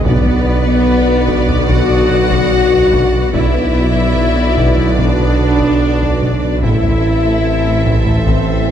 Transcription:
0.03 B1 B2 D3 F#3 B3 D4 F#4 B4 D5, taiko
0.26 B3, taiko low
0.46 B3
0.67 B2
0.88 B2
1.08 B3
1.28 B2, taiko
1.49 B2, taiko low
1.69 B2 F#4 F#5, taiko
1.89 B2
2.10 B2
2.30 B2, taiko
2.52 B2
2.72 B2, taiko low
2.92 B2, taiko
3.13 B2
3.32 B1 B2 D3 F#3 B3 D4 E4 F#4 B4 D5 E5, taiko
3.54 B3, taiko low
3.74 B3
3.95 B2
4.16 B2
4.36 B3
4.57 B2, taiko
4.77 B2, taiko low
4.98 B2 D4 D5, taiko
5.19 B2
5.40 B2
5.60 B2, taiko
5.81 B2
6.01 B2, taiko low
6.22 B2, taiko
6.44 B2
6.62 A1 A2 E3 C4 E4 A4 C5 E5, taiko
6.83 A3, taiko low
7.04 A3
7.25 A2
7.45 A2
7.66 A3
7.86 A2, taiko
8.06 A2, taiko low
8.26 A2 C4 C5, taiko
8.48 A2
8.68 A2

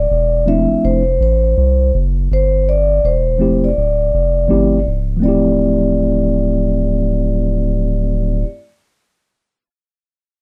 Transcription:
Already playing: D5
0.10 E1
0.46 F3 A3 C4 D4 E4 E5
0.70 F1
0.84 F1 C5
1.20 A1 C5
1.57 C2
1.94 F#1
2.31 G1 C5
2.69 D5
3.04 E1 C5
3.38 F3 A3 C4 E4 G4
3.64 D5
3.77 D1
4.14 F1
4.48 G1 F3 A3 C4 E4 G4
4.87 C#1
5.17 F3 A3
5.22 D1 C4 E4 D5
5.28 G4

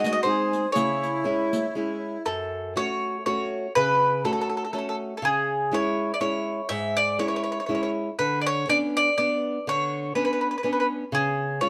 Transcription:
Already playing: G#3 C4 D#4 F#4
0.04 D#5, riq
0.13 D#5
0.23 G#3 C4 D#4 G#4 C5
0.53 riq
0.72 C#3 E4 C#5, riq
1.03 riq
1.24 G#3 C#4 E4
1.53 riq
1.75 G#3 C#4 E4
2.26 F#2 A4
2.76 A3 C#4 F#4 C#5
3.26 A3 C#4 F#4 C#5
3.75 C#3 B4
4.24 A3 C#4 F#4 A4
4.33 A4
4.41 A4
4.50 A4
4.57 A4
4.65 A4
4.73 A3 C#4 F#4 A4
4.78 A4
4.89 A4
5.17 A4
5.22 C#3 G#4
5.71 G#3 C#4 E4 C#5
6.14 D5
6.20 G#3 C#4 E4 C#5
6.69 G#2 E5
6.97 D5
7.18 G#3 C#4 E4 C#5
7.28 C#5
7.36 C#5
7.44 C#5
7.52 C#5
7.60 C#5
7.66 G#3 C#4 E4 C#5
7.75 C#5
7.83 C#5
8.19 D3 B4
8.41 D5
8.46 C#5
8.68 B3 C#4 D4 D5
8.97 D5
9.18 B3 D4 D5
9.67 D3 C#5
10.15 B3 C#4 D4 B4
10.25 B4
10.33 B4
10.41 B4
10.51 B4
10.58 B4
10.63 B3 C#4 D4 B4
10.73 B4
10.80 B4
11.12 C#3 G#4
11.61 G#3 C#4 F4 C#5

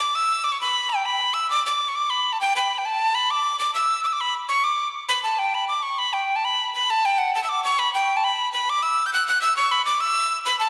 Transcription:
Already playing: D6
0.15 E6
0.44 D6
0.52 C#6
0.61 B5
0.89 G5
1.05 B5
1.34 E6
1.50 D6
1.66 D6
1.88 C#6
1.95 D6
2.10 B5
2.32 A5
2.41 G5
2.56 B5
2.78 G5
2.85 A5
3.15 B5
3.30 D6
3.59 D6
3.74 E6
4.04 D6 E6
4.13 D6
4.20 B5
4.49 C#6
4.64 D6
5.08 B5
5.23 A5
5.39 G5
5.54 B5
5.68 D6
5.82 C#6
5.98 B5
6.13 G5
6.36 A5
6.45 B5
6.74 B5
6.90 A5
7.05 G5
7.18 F#5
7.35 A5
7.43 E6
7.49 D6
7.64 C#6
7.79 B5
7.94 G5
8.16 A5
8.24 B5
8.53 B5
8.69 D6
8.82 E6
9.06 G6
9.13 F#6
9.27 F#6
9.41 E6
9.56 C#6
9.71 B5
9.85 D6
10.00 E6
10.45 B5
10.59 A5

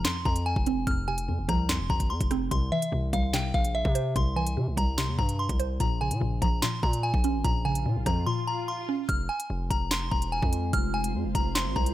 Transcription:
Already playing: C3 F3
0.05 F2 C6, snare, clap, closed hi-hat
0.25 F2 A#5, kick
0.36 closed hi-hat
0.46 G#5
0.56 F1, kick
0.66 C4, closed hi-hat
0.77 E1
0.87 F1 F2 F6, kick, closed hi-hat
1.08 C3 G#5
1.18 closed hi-hat
1.28 F2
1.38 F1
1.48 C2 F3 A#5, kick, cross-stick, closed hi-hat
1.69 F2 C6, snare, clap, closed hi-hat
1.79 E1
1.90 G#1 A#5, kick
2.00 kick, closed hi-hat
2.10 F2 C6
2.21 F1, kick, closed hi-hat
2.31 C4, cross-stick, closed hi-hat
2.51 C2 C3 C6, kick, closed hi-hat
2.72 E3 E5
2.82 closed hi-hat
2.92 C2 C3
3.13 C2 G3 F5, kick, closed hi-hat
3.33 C3 G5, snare, clap, closed hi-hat
3.54 A#1 F5, kick
3.65 closed hi-hat
3.75 E5
3.85 C3, kick
3.95 C5, closed hi-hat
4.16 C2 C3 C6, kick, closed hi-hat
4.36 E3 G#5
4.47 closed hi-hat
4.57 C3
4.67 C2
4.77 C2 G3 A#5, kick, closed hi-hat
4.98 C3 C6, snare, clap, closed hi-hat
5.08 E2
5.19 G2 A#5, kick
5.29 closed hi-hat
5.39 C6
5.49 C2, kick, closed hi-hat
5.59 C5, closed hi-hat
5.80 A#1 A#2 A#5, kick, closed hi-hat
6.01 C#3 G#5
6.11 A#2, closed hi-hat
6.21 A#1 A#2
6.42 A#1 F3 A#5, kick, closed hi-hat
6.62 A#2 C6, snare, clap, closed hi-hat
6.83 A#2 A#5, kick
6.93 closed hi-hat
7.03 G#5
7.14 A#1, kick
7.24 C#4, closed hi-hat
7.34 G#1
7.44 A#1 A#2 A#5, kick, closed hi-hat, swell
7.65 C#3 G#5
7.75 closed hi-hat
7.86 A#2
7.96 A#1
8.06 F2 F3 A#5, kick, cross-stick, closed hi-hat
8.26 A#2 C6
8.47 A#5
8.68 C6
8.89 C#4
9.09 F1 G#3 C4 F4 C5 F6, kick, closed hi-hat
9.29 G#5
9.40 closed hi-hat
9.50 F1
9.70 F1 A#5, kick, closed hi-hat
9.91 C6, snare, clap, closed hi-hat
10.11 E1 A#5, kick
10.22 closed hi-hat
10.32 G#5
10.43 F2, kick
10.53 closed hi-hat
10.73 F1 F6, kick, closed hi-hat
10.94 G#5
11.04 closed hi-hat
11.14 F2
11.25 F1
11.35 F1 A#5, kick, closed hi-hat
11.55 C6, snare, clap, closed hi-hat
11.66 G#1
11.76 C2 A#5, kick
11.86 closed hi-hat

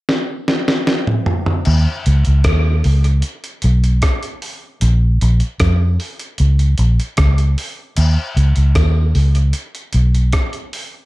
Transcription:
0.09 snare
0.48 snare
0.68 snare
0.87 snare
1.07 mid tom
1.26 floor tom
1.46 floor tom
1.65 D#2, crash
2.06 C#2, closed hi-hat
2.25 C#2, closed hi-hat
2.44 D#2, kick, cross-stick, closed hi-hat
2.84 C#2, open hi-hat
3.04 closed hi-hat
3.22 closed hi-hat
3.44 closed hi-hat
3.62 B1, closed hi-hat
3.84 closed hi-hat
4.02 kick, cross-stick, closed hi-hat
4.23 closed hi-hat
4.42 open hi-hat
4.81 A#1, closed hi-hat
5.21 A#1, closed hi-hat
5.40 closed hi-hat
5.60 F2, kick, cross-stick, closed hi-hat
6.00 open hi-hat
6.19 closed hi-hat
6.38 C#2, closed hi-hat
6.59 closed hi-hat
6.78 A#1, closed hi-hat
7.00 closed hi-hat
7.17 C#2, kick, cross-stick, closed hi-hat
7.38 closed hi-hat
7.58 open hi-hat
7.97 D#2, closed hi-hat, crash
8.37 C#2, closed hi-hat
8.56 C#2, closed hi-hat
8.75 D#2, kick, cross-stick, closed hi-hat
9.15 C#2, open hi-hat
9.35 closed hi-hat
9.53 closed hi-hat
9.75 closed hi-hat
9.93 B1, closed hi-hat
10.15 closed hi-hat
10.33 kick, cross-stick, closed hi-hat
10.53 closed hi-hat
10.73 open hi-hat

